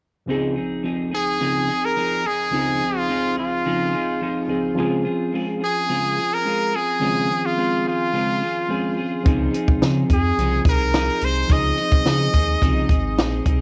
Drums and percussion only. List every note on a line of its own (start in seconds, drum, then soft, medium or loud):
9.26 kick loud
9.26 closed hi-hat medium
9.54 closed hi-hat medium
9.68 kick loud
9.82 snare medium
9.82 closed hi-hat medium
10.10 kick medium
10.10 closed hi-hat medium
10.38 closed hi-hat medium
10.65 kick loud
10.65 closed hi-hat medium
10.94 snare loud
10.94 closed hi-hat medium
11.21 closed hi-hat medium
11.50 kick loud
11.50 closed hi-hat medium
11.78 closed hi-hat medium
11.92 kick medium
12.06 snare medium
12.06 closed hi-hat medium
12.34 kick medium
12.34 closed hi-hat medium
12.62 kick medium
12.62 closed hi-hat medium
12.89 kick medium
12.89 closed hi-hat medium
13.18 snare loud
13.18 closed hi-hat medium
13.46 kick medium
13.46 closed hi-hat medium